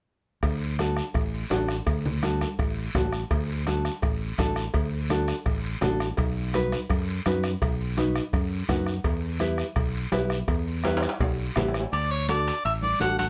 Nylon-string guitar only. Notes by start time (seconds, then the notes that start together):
0.79 D4 F#4 A4
1.50 D4 F#4 A4
2.23 D4 F#4 A4
2.95 D4 F#4 A4
3.67 D4 F#4 A4
4.39 D4 F#4 A4
5.10 D4 F#4 A4
5.82 D4 F#4 A4
6.54 D#4 F#4 B4
7.26 D#4 F#4 B4
7.97 D#4 F#4 B4
8.69 D#4 F#4 B4 F#5
9.40 E4 G4 B4
10.12 E4 G4 B4
10.84 E4 G4 B4
11.56 E4 G4 B4
12.29 D4 F#4 A4
13.00 D4 F#4 A4